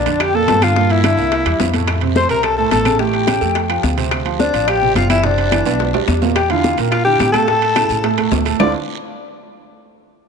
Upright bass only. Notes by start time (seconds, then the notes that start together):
0.06 F2
0.48 G2
1.17 C2
1.45 E2
1.59 F2
2.29 C2
2.71 A1
3.41 F2
3.83 D2
4.53 A1
4.95 F#1
5.66 B1
5.94 D2
6.08 E2
6.77 A#2
7.20 A2
7.89 A2
8.31 D2